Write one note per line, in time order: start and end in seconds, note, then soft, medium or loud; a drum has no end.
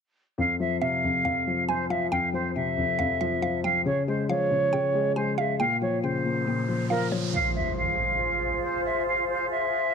0.38 1.02 F2 medium
0.38 0.56 F5 medium
0.60 1.46 F3 medium
0.60 0.77 E5 medium
0.81 1.90 C3 medium
0.81 1.22 E5 medium
0.81 1.64 F5 medium
1.04 1.23 F2 medium
1.25 2.10 F2 medium
1.25 1.66 F5 medium
1.47 1.67 F3 medium
1.68 1.88 F3 medium
1.68 1.86 C5 medium
1.68 1.89 G#5 medium
1.90 2.32 F3 medium
1.90 2.07 E5 medium
1.90 2.11 F5 medium
2.11 2.76 F2 medium
2.11 2.29 F5 medium
2.11 2.53 G5 loud
2.33 3.19 F3 medium
2.33 2.51 C5 medium
2.55 3.64 C3 medium
2.55 3.60 E5 medium
2.77 2.98 F2 medium
2.99 3.86 F2 medium
2.99 3.19 F5 medium
3.21 3.41 F3 medium
3.21 3.41 E5 medium
3.42 3.62 F3 medium
3.42 3.63 F5 medium
3.64 3.86 F3 medium
3.64 3.81 F5 medium
3.64 3.85 G5 medium
3.85 4.49 C#3 medium
3.85 4.03 C#5 medium
4.08 4.93 G#3 medium
4.08 4.25 C5 medium
4.29 5.38 F3 medium
4.29 5.12 C#5 medium
4.29 4.70 F5 medium
4.51 4.72 C#3 medium
4.73 5.60 C#3 medium
4.73 5.14 G5 medium
4.94 5.15 G#3 medium
5.16 5.37 G#3 medium
5.16 5.33 C5 medium
5.16 5.37 G#5 medium
5.38 5.60 G#3 medium
5.38 5.55 E5 medium
5.38 5.59 F5 medium
5.60 6.23 A#2 medium
5.60 5.77 F5 loud
5.60 6.01 G5 loud
5.60 riser medium
5.82 6.67 F3 medium
5.82 5.99 C#5 medium
6.03 7.12 C#3 medium
6.03 6.86 C5 medium
6.25 6.45 A#2 medium
6.46 7.34 A#2 medium
6.68 6.89 F3 medium
6.90 7.10 F3 medium
6.90 7.07 A#4 medium
6.90 7.11 F5 medium
7.12 7.34 F3 medium
7.12 7.33 C#5 medium
7.34 9.94 F4 medium
7.34 9.94 G#4 medium
7.34 9.94 C5 medium
7.34 7.51 F5 loud
7.34 impact medium
7.55 7.72 E5 medium
7.77 8.60 F5 medium
8.64 8.81 C5 medium
8.85 9.03 E5 medium
9.07 9.24 F5 medium
9.29 9.46 C5 medium
9.51 9.94 E5 medium